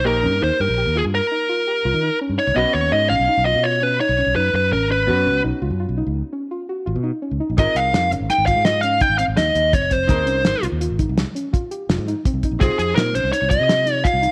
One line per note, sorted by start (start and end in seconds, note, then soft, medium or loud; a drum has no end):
0.04 0.26 A#1 medium
0.04 2.52 A#3 medium
0.04 2.53 D#4 medium
0.04 0.16 G4 medium
0.04 2.53 G4 medium
0.04 0.43 A#4 medium
0.04 2.54 A#4 medium
0.23 0.39 G2 medium
0.23 0.34 C#4 medium
0.41 0.50 D#2 medium
0.41 0.52 D#4 medium
0.41 0.61 C5 medium
0.60 0.67 G2 medium
0.60 0.71 G4 medium
0.60 0.97 A#4 medium
0.69 0.84 A#1 medium
0.78 0.88 G4 medium
0.86 1.01 D#2 medium
0.95 1.17 F4 medium
0.95 1.02 G#4 medium
1.05 1.19 G2 medium
1.15 2.18 A#4 medium
1.32 1.42 D#4 medium
1.49 1.60 F4 medium
1.67 1.78 G4 medium
1.85 1.92 C2 medium
1.85 1.96 F4 medium
1.94 2.09 D#3 medium
2.03 2.13 D#4 medium
2.21 2.32 C#4 medium
2.29 2.37 G2 medium
2.38 2.49 D#4 medium
2.38 2.57 C#5 medium
2.47 2.55 C2 medium
2.54 2.64 B1 medium
2.54 5.02 B3 medium
2.54 5.03 C#4 soft
2.54 2.78 F#4 medium
2.54 5.04 F#4 medium
2.54 5.04 B4 medium
2.54 2.73 D#5 medium
2.73 2.89 D#2 medium
2.73 2.90 C#5 medium
2.92 3.12 G#2 medium
2.92 3.03 D#4 medium
2.92 3.09 D#5 medium
3.09 3.18 B1 medium
3.09 3.21 C#4 medium
3.09 3.45 F5 medium
3.19 3.27 B1 medium
3.28 3.39 D#4 medium
3.37 3.52 B1 medium
3.45 3.57 F4 medium
3.45 3.64 D#5 medium
3.55 3.99 B2 medium
3.63 3.75 F4 medium
3.63 3.83 C#5 medium
3.82 3.93 C#4 medium
3.82 4.00 B4 medium
4.00 4.11 D#4 medium
4.00 4.35 C#5 medium
4.09 4.24 B1 medium
4.18 4.29 C#4 medium
4.26 4.34 B1 medium
4.36 4.50 F#2 medium
4.36 4.57 D#4 medium
4.36 4.52 B4 medium
4.53 4.73 F#2 medium
4.53 4.71 B4 medium
4.72 4.81 B1 medium
4.72 4.83 C#4 medium
4.72 4.91 A#4 medium
4.81 5.10 G#1 medium
4.90 5.00 C#4 medium
4.90 5.41 B4 medium
5.07 5.27 F#2 medium
5.07 7.54 B3 medium
5.07 7.55 C#4 medium
5.07 5.18 F#4 medium
5.07 7.55 F#4 medium
5.07 7.56 B4 medium
5.26 5.40 C#2 medium
5.26 5.36 C#4 medium
5.44 5.51 B1 medium
5.44 5.54 D#4 medium
5.62 5.69 C#2 medium
5.62 5.72 F4 medium
5.70 5.85 F#2 medium
5.80 5.90 F4 medium
5.89 6.03 B1 medium
5.97 6.19 D#4 medium
6.07 6.21 C#2 medium
6.33 6.43 C#4 medium
6.51 6.62 F4 medium
6.69 6.80 F#4 medium
6.86 6.94 G#1 medium
6.86 6.97 F4 medium
6.96 7.10 B2 medium
7.03 7.14 D#4 medium
7.22 7.33 C#4 medium
7.31 7.39 C#2 medium
7.40 7.51 D#4 medium
7.50 7.57 A#1 medium
7.57 7.65 G#1 medium
7.57 10.05 C4 medium
7.57 10.05 D#4 medium
7.57 7.79 F4 medium
7.57 10.06 G#4 medium
7.57 10.06 A#4 medium
7.57 7.77 D#5 medium
7.57 kick loud
7.57 closed hi-hat medium
7.75 7.90 C2 medium
7.75 8.10 F5 medium
7.75 closed hi-hat medium
7.93 8.13 F2 medium
7.93 8.05 D#4 medium
7.93 snare loud
7.93 closed hi-hat medium
8.11 8.19 G#1 medium
8.11 8.23 C#4 medium
8.11 closed hi-hat medium
8.20 8.28 G#1 medium
8.30 8.40 D#4 medium
8.30 8.46 G5 medium
8.30 snare soft
8.30 closed hi-hat medium
8.38 8.53 G#1 medium
8.46 8.58 F4 medium
8.46 8.65 F5 medium
8.46 kick medium
8.46 closed hi-hat medium
8.56 9.00 G#2 medium
8.65 8.77 F4 medium
8.65 8.81 D#5 medium
8.65 snare loud
8.65 closed hi-hat medium
8.81 8.94 C#4 medium
8.81 9.01 F5 medium
8.81 closed hi-hat medium
9.01 9.12 D#4 medium
9.01 9.18 G5 medium
9.01 kick medium
9.01 closed hi-hat medium
9.10 9.25 G#1 medium
9.18 9.30 C4 medium
9.18 9.23 F5 medium
9.18 closed hi-hat medium
9.28 9.36 G#1 medium
9.37 9.52 D#2 medium
9.37 9.59 D#4 medium
9.37 9.73 D#5 medium
9.37 snare loud
9.37 closed hi-hat medium
9.55 9.75 D#2 medium
9.55 closed hi-hat medium
9.73 9.82 G#1 medium
9.73 9.84 C4 medium
9.73 9.92 C#5 medium
9.73 kick medium
9.73 closed hi-hat medium
9.82 10.10 F1 medium
9.91 10.02 C4 medium
9.91 10.64 C5 medium
9.91 kick medium
9.91 snare soft
9.91 closed hi-hat medium
10.07 10.27 D#2 medium
10.07 12.56 C4 medium
10.07 12.56 D#4 medium
10.07 10.20 D#4 medium
10.07 12.56 G#4 medium
10.07 12.57 A#4 medium
10.07 kick loud
10.07 closed hi-hat medium
10.26 10.42 C2 medium
10.26 10.37 C#4 medium
10.26 closed hi-hat medium
10.44 10.53 G#1 medium
10.44 10.55 D#4 medium
10.44 snare loud
10.44 closed hi-hat medium
10.62 10.70 C2 medium
10.62 10.73 F4 medium
10.62 closed hi-hat medium
10.72 10.87 D#2 medium
10.81 10.92 F4 medium
10.81 closed hi-hat medium
10.90 11.05 G#1 medium
10.99 11.20 D#4 medium
10.99 kick medium
10.99 closed hi-hat medium
11.09 11.24 C2 medium
11.18 snare loud
11.18 closed hi-hat medium
11.35 11.46 C#4 medium
11.35 closed hi-hat medium
11.53 11.64 F4 medium
11.53 kick medium
11.53 closed hi-hat medium
11.71 11.82 G4 medium
11.71 closed hi-hat soft
11.89 11.96 F1 medium
11.89 12.00 F4 medium
11.89 snare loud
11.89 closed hi-hat medium
11.98 12.13 G#2 medium
12.08 12.18 D#4 medium
12.08 closed hi-hat medium
12.25 12.36 C4 medium
12.25 kick medium
12.25 closed hi-hat medium
12.34 12.41 C2 medium
12.43 12.55 D#4 medium
12.43 kick medium
12.43 closed hi-hat medium
12.51 12.59 A#1 medium
12.59 12.68 C2 loud
12.59 14.32 C4 medium
12.59 14.32 D#4 medium
12.59 12.83 F4 loud
12.59 14.32 G4 medium
12.59 12.78 G#4 medium
12.59 14.32 C5 medium
12.59 kick loud
12.59 closed hi-hat medium
12.78 12.93 F2 medium
12.78 12.95 G#4 medium
12.78 closed hi-hat medium
12.95 13.16 A#2 medium
12.95 13.08 D#4 medium
12.95 13.13 A#4 medium
12.95 snare loud
12.95 closed hi-hat medium
13.14 13.22 C2 medium
13.14 13.25 C#4 medium
13.14 13.31 C5 medium
13.14 closed hi-hat medium
13.24 13.31 C2 medium
13.32 13.43 D#4 medium
13.32 13.49 C#5 medium
13.32 closed hi-hat medium
13.42 13.56 C2 medium
13.50 13.61 F4 medium
13.50 13.94 D#5 loud
13.50 kick medium
13.50 closed hi-hat medium
13.60 14.04 C3 medium
13.68 13.79 F4 medium
13.68 snare loud
13.68 closed hi-hat medium
13.86 13.97 D#4 medium
13.86 closed hi-hat medium
13.94 14.06 C#5 loud
14.04 14.15 F4 medium
14.04 14.32 F5 medium
14.04 kick medium
14.04 closed hi-hat medium
14.13 14.28 C2 medium
14.22 14.32 D#4 medium
14.22 closed hi-hat medium